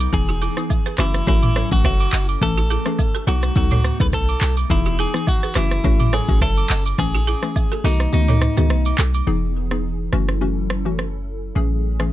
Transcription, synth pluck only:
0.13 E3 B3 D#4 G#4
0.57 E3 B3 D#4 G#4
0.98 E3 A3 C#4 F#4
1.27 E3 A3 C#4 F#4
1.71 E3 A3 C#4 F#4
2.41 E3 A3 C#4 A4
2.86 E3 A3 C#4 G#4
3.27 F#3 B3 D#4 A4
3.56 F#3 B3 D#4 A4
4.00 F#3 B3 D#4 A4
4.70 E3 B3 D#4 G#4
5.14 E3 B3 D#4 G#4
5.55 E3 A3 C#4 F#4
5.84 E3 A3 C#4 F#4
6.28 E3 A3 C#4 F#4
6.98 E3 A3 C#4 G#4
7.43 E3 A3 C#4 G#4
7.84 D#3 A3 B3 F#4
8.13 D#3 A3 B3 F#4
8.57 D#3 A3 B3 F#4
9.27 E3 B3 D#4 G#4
9.71 E3 B3 D#4 G#4
10.13 E3 A3 C#4 F#4
10.41 E3 A3 C#4 F#4
10.85 E3 A3 C#4 F#4
11.55 E3 A3 C#4 G#4
12.00 E3 A3 C#4 G#4

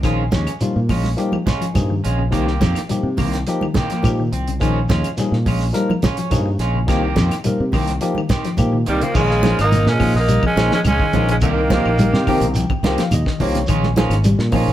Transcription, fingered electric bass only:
0.04 A#1
0.33 D#2
0.61 muted fingered electric bass stroke
0.76 A#2
0.89 A#1
1.75 G2
2.06 A#1
2.32 C2
2.61 F2
2.90 muted fingered electric bass stroke
3.03 C3
3.18 C2
4.04 A#2
4.32 C2
4.61 A#1
4.89 D#2
5.18 muted fingered electric bass stroke
5.32 A#2
5.46 A#1
6.32 G2
6.59 A#1
6.88 C2
7.16 F2
7.45 muted fingered electric bass stroke
7.60 C3
7.73 C2
8.58 A#2
8.88 C2
9.15 A#1
9.59 G#1
9.86 A#2
10.14 A#1
10.56 A#1
10.85 C#2
11.14 A#1
11.42 C2
11.86 A#1
12.13 C3
12.41 C2
12.83 C2
13.11 D#2
13.41 C2
13.68 A#1
14.10 G#1
14.39 A#2
14.68 A#1

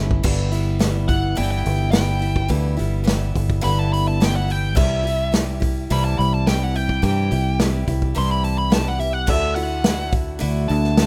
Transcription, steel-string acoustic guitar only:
Already playing: E3 A3 C#4 E4
0.23 G2 D3 E3 G3 B3 E4
0.52 E3 G3 B3 E4
0.79 E3 G3 B3 E4
1.09 E3 G3 B3 E4
1.35 G2 D3 E3 G3 B3 E4
1.92 E3 G3 B3 E4
2.19 E3 G3 B3 E4
2.48 G2 D3 E3 G3 B3 E4
2.77 E3 G3 B3 E4
3.04 E3 G3 B3 E4
3.61 G2 D3 E3 G3 B3 E4
4.20 E3 G3 B3 E4
4.47 E3 G3 B3 E4
4.75 C3 E3 G3 E4 G4
5.03 G3 E4 G4
5.32 E3 G3 E4 G4
5.60 G3 E4 G4
5.90 C3 E3 G3 E4 G4
6.47 E3 G3 E4 G4
6.74 G3 E4 G4
7.02 C3 E3 G3 E4 G4
7.31 G3 E4 G4
7.60 E3 G3 E4 G4
7.88 G3 E4 G4
8.15 C3 E3 G3 E4 G4
8.70 E3 G3 E4 G4
8.99 G3 E4 G4
9.27 D3 A3 E4 F#4
9.56 A3 E4 F#4
9.84 D3 A3 E4 F#4
10.39 D3 A3 E4 F#4
10.97 D3 A3 E4 F#4

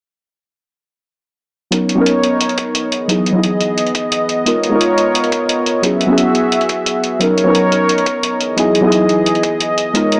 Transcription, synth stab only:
1.71 F#3 B3 C#4 D#4 A#4
1.95 F#3 B3 C#4
2.00 D#4 A#4
3.08 F#3 B3 D#4 E4 G#4
3.32 F#3 B3 D#4
3.37 E4 G#4
4.45 G#3 B3 D#4 F4 A#4
4.69 G#3 B3 D#4
4.74 F4 A#4
5.82 F#3 B3 C#4 E4 G#4
6.06 F#3 B3 C#4
6.11 E4 G#4
7.19 F#3 B3 C#4 D#4 A#4
7.44 F#3 B3 C#4
7.48 D#4 A#4
8.56 F#3 B3 D#4 E4 G#4
8.81 F#3 B3 D#4
8.85 E4 G#4
9.93 G#3 B3 D#4 F4 A#4

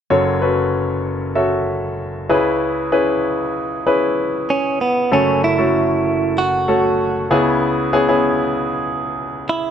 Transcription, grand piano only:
0.10 F#1 F#2 C#4 F#4 A4 C#5
0.42 C#4 F#4 A4 B4
1.35 C#4 F#4 A4 E5
2.29 C#2 C#3 C#4 E4 G#4 B4
2.92 C#4 E4 G#4 B4
3.87 C#4 E4 G#4 B4
5.11 F#1 F#2 A3 C#4 F#4 A4
5.58 A3 C#4 F#4 A4
6.68 A3 C#4 F#4 A4
7.31 C#2 C#3 B3 C#4 E4 G#4
7.93 B3 C#4 E4 G#4
8.09 B3 C#4 E4 G#4

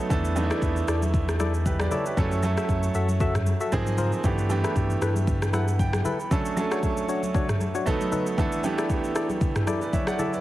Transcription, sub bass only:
0.10 E2
0.62 E2
0.88 E2
2.17 F#2
2.69 F#2
2.95 F#2
3.72 G#2
4.24 G2
4.76 G2
5.02 G2

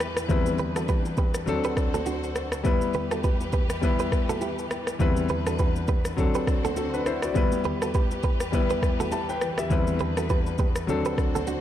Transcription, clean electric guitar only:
0.59 G4 B4
0.76 F#4 A4
0.89 G4 B4
1.18 G4 B4
1.65 G4 B4
1.94 F#4 A4
2.07 D4 F#4
2.95 G4 B4
3.12 F#4 A4
3.24 G4 B4
3.53 G4 B4
4.00 G4 B4
4.29 F#4 A4
4.42 E4 G4
5.30 G4 B4
5.47 F#4 A4
5.59 G4 B4
5.89 G4 B4
6.35 G4 B4
6.65 F#4 A4
6.77 D4 F#4
7.65 G4 B4
7.82 F#4 A4
7.95 G4 B4
8.24 G4 B4
8.71 G4 B4
9.00 F#4 A4
9.12 E4 G4
10.01 G4 B4
10.18 F#4 A4
10.30 G4 B4
10.59 G4 B4
11.06 G4 B4
11.35 F#4 A4
11.48 D4 F#4

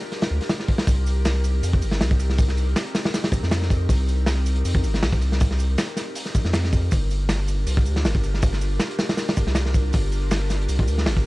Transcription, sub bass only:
0.31 D2
0.87 C2
1.63 F2
1.82 G1
2.01 C2
3.32 A#1
3.42 F2
3.89 C2
4.65 F2
4.83 G1
5.02 C2
6.35 A#1
6.45 F2
6.92 G1
7.66 C2
7.85 D2
8.04 G1
9.37 F1
9.47 C2
9.94 G1
10.69 C2
10.87 D2
11.06 G1

